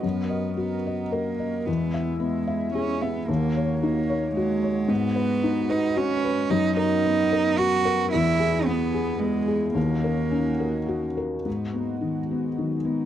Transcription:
0.00 1.64 F#2 medium
0.00 1.64 F#4 medium
0.00 1.67 A#4 medium
0.00 1.64 D#5 medium
0.05 0.57 B3 medium
0.30 0.74 D#5 soft
0.57 1.13 B3 medium
0.57 1.01 F#4 soft
0.87 1.30 D#5 soft
1.12 1.67 A#3 medium
1.12 1.56 A#4 soft
1.39 1.67 D#5 soft
1.66 3.24 E2 medium
1.66 3.28 G#3 medium
1.66 2.20 B3 medium
1.66 3.28 E4 medium
1.66 3.28 E5 medium
1.94 2.37 E5 soft
2.20 2.74 G#3 medium
2.20 2.64 B3 soft
2.47 2.91 E5 soft
2.74 3.03 C#4 medium
2.74 3.18 G#4 soft
3.01 3.29 B3 medium
3.01 3.28 E5 soft
3.27 4.86 D#2 medium
3.27 3.80 A#3 medium
3.27 4.89 A#3 medium
3.27 8.12 F#4 medium
3.27 4.90 C#5 medium
3.57 3.99 C#5 medium
3.81 4.34 A#3 medium
3.81 4.26 D#4 medium
4.09 4.52 C#5 medium
4.36 4.91 G#3 medium
4.36 4.79 F#4 medium
4.63 4.90 C#5 soft
4.88 6.46 G#2 medium
4.88 6.50 G#3 medium
4.88 5.71 B3 loud
4.88 6.50 B4 medium
5.16 5.59 B4 medium
5.44 5.86 D#4 medium
5.69 5.98 D#4 loud
5.69 6.12 B4 medium
5.96 6.52 C#4 loud
5.96 6.39 F#4 medium
6.25 6.51 B4 medium
6.50 8.08 F#2 medium
6.50 9.76 B3 medium
6.50 6.76 D#4 loud
6.50 8.12 A#4 medium
6.77 7.59 D#4 loud
6.77 7.20 A#4 medium
7.05 7.48 B3 medium
7.33 7.75 A#4 medium
7.58 8.12 F#4 loud
7.58 8.02 F#4 medium
7.85 8.12 A#4 medium
8.11 9.73 E2 medium
8.11 9.76 E4 medium
8.11 8.67 E4 loud
8.11 9.76 G#4 medium
8.40 8.82 G#4 medium
8.66 9.20 B3 loud
8.66 9.10 B3 medium
8.94 9.38 G#4 medium
9.19 9.74 G#3 loud
9.19 9.65 B3 medium
9.48 9.76 G#4 soft
9.74 11.42 D#2 medium
9.74 11.14 A#3 medium
9.74 11.46 C#4 medium
9.74 11.45 D#4 medium
9.74 11.44 F#4 medium
10.04 10.50 A#4 medium
10.31 10.77 C#4 soft
10.60 11.06 A#4 soft
10.88 11.35 F#4 soft
11.17 11.46 A#4 soft
11.45 13.05 G#2 soft
11.45 13.05 G#3 soft
11.45 11.76 B3 soft
11.45 13.05 D#4 medium
11.45 13.05 F#4 medium
11.73 12.01 A#3 soft
11.73 12.19 B3 soft
12.01 12.46 D#3 soft
12.01 12.58 G#3 soft
12.31 12.75 B3 soft
12.56 13.02 D#3 soft
12.56 12.86 F#3 soft
12.84 13.05 G#3 soft
12.84 13.05 B3 soft

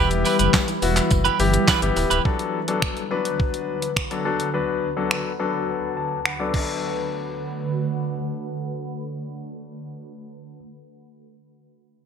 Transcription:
0.00 0.25 E1 loud
0.00 2.21 E3 medium
0.00 2.21 G3 medium
0.00 0.63 B3 medium
0.00 0.10 E4 medium
0.00 0.63 E4 medium
0.00 2.21 E4 medium
0.00 0.10 G4 medium
0.00 0.63 G4 loud
0.00 2.21 B4 medium
0.11 muted clean electric guitar stroke medium
0.11 closed hi-hat medium
0.11 shaker soft
0.25 0.36 E4 medium
0.25 0.36 G4 medium
0.25 0.37 B4 medium
0.25 open hi-hat medium
0.25 tambourine soft
0.25 shaker medium
0.39 0.49 F#1 medium
0.39 0.51 E4 medium
0.39 0.51 G4 medium
0.39 0.50 B4 medium
0.39 closed hi-hat medium
0.39 tambourine soft
0.39 shaker medium
0.54 kick loud
0.54 snare medium
0.54 clap loud
0.54 tambourine medium
0.54 shaker medium
0.68 muted clean electric guitar stroke soft
0.68 closed hi-hat medium
0.68 tambourine soft
0.68 shaker medium
0.82 1.01 E1 medium
0.82 1.27 B3 medium
0.82 1.27 E4 medium
0.82 1.27 F#4 loud
0.82 open hi-hat medium
0.82 tambourine medium
0.82 shaker medium
0.96 muted clean electric guitar stroke soft
0.96 clap medium
0.96 closed hi-hat medium
0.96 tambourine soft
0.96 shaker medium
1.11 1.30 F#1 medium
1.11 muted clean electric guitar stroke soft
1.11 kick loud
1.11 tambourine medium
1.11 shaker medium
1.25 1.38 E4 medium
1.25 1.38 G4 medium
1.25 1.39 B4 medium
1.25 closed hi-hat medium
1.25 shaker medium
1.39 1.58 G1 loud
1.39 1.73 B3 medium
1.39 1.73 E4 medium
1.39 1.73 G4 loud
1.39 open hi-hat medium
1.39 tambourine medium
1.39 shaker medium
1.53 muted clean electric guitar stroke soft
1.53 closed hi-hat medium
1.53 shaker medium
1.67 1.82 E4 medium
1.67 1.82 G4 medium
1.67 1.81 B4 loud
1.67 kick loud
1.67 snare loud
1.67 clap loud
1.67 tambourine medium
1.67 shaker medium
1.82 1.92 G1 medium
1.82 2.16 B3 medium
1.82 2.16 E4 medium
1.82 2.16 G4 medium
1.82 muted clean electric guitar stroke soft
1.82 closed hi-hat medium
1.82 shaker medium
1.96 2.06 D1 loud
1.96 muted clean electric guitar stroke soft
1.96 open hi-hat medium
1.96 tambourine medium
1.96 shaker medium
2.10 2.20 C#1 medium
2.10 2.22 E4 medium
2.10 2.22 G4 medium
2.10 2.22 B4 medium
2.10 closed hi-hat medium
2.10 shaker medium
2.25 6.50 D2 medium
2.25 6.50 D3 medium
2.25 2.58 F#3 medium
2.25 2.59 B3 medium
2.25 2.59 D4 medium
2.25 6.50 F#4 medium
2.25 2.59 A4 medium
2.25 6.50 B4 medium
2.25 kick loud
2.39 closed hi-hat soft
2.68 3.01 F#3 medium
2.68 3.01 B3 medium
2.68 3.01 D4 medium
2.68 3.02 A4 medium
2.68 closed hi-hat medium
2.82 finger snap loud
2.82 kick loud
2.97 closed hi-hat soft
3.11 3.88 F#3 medium
3.11 3.89 B3 medium
3.11 3.89 D4 medium
3.11 3.89 B4 loud
3.25 closed hi-hat medium
3.40 kick loud
3.54 closed hi-hat medium
3.82 closed hi-hat medium
3.97 finger snap loud
3.97 kick loud
4.11 4.22 F#3 medium
4.11 4.22 B3 medium
4.11 4.22 D4 medium
4.11 4.22 A4 medium
4.11 closed hi-hat medium
4.25 4.47 F#3 medium
4.25 4.47 B3 medium
4.25 4.47 D4 medium
4.25 4.48 A4 medium
4.40 closed hi-hat medium
4.54 4.87 F#3 medium
4.54 4.87 B3 medium
4.54 4.87 D4 medium
4.54 4.87 B4 medium
4.97 5.30 F#3 medium
4.97 5.30 B3 medium
4.97 5.30 D4 medium
4.97 5.30 A4 medium
5.11 finger snap loud
5.39 6.17 F#3 medium
5.39 6.17 B3 medium
5.39 6.17 D4 medium
5.39 6.17 A4 medium
5.97 6.23 A5 medium
6.25 6.39 F#5 medium
6.25 finger snap loud
6.39 6.50 F#3 medium
6.39 6.51 B3 medium
6.39 6.51 D4 medium
6.39 6.51 A4 medium
6.39 6.53 D5 medium
6.52 9.87 D3 medium
6.52 10.56 F#3 medium
6.52 9.87 A3 medium
6.52 10.57 B3 medium
6.52 10.57 D4 medium
6.52 9.87 F#4 medium
6.52 9.87 B4 medium
6.52 kick loud
6.52 crash medium

